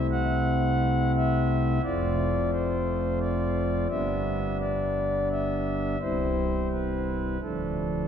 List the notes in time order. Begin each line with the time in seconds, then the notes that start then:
Already playing: C2 C3 A3 C4 E4
0.11 F#5
1.16 E5
1.84 F1 F2 A3 C4 F4 D5
2.52 C5
3.20 D5
3.89 G1 G2 G3 B3 D4 E5
4.60 D5
5.30 E5
6.01 C1 C2 G3 C4 E4 C5
6.71 B4
7.42 D1 D2 F3 A3 D4 A4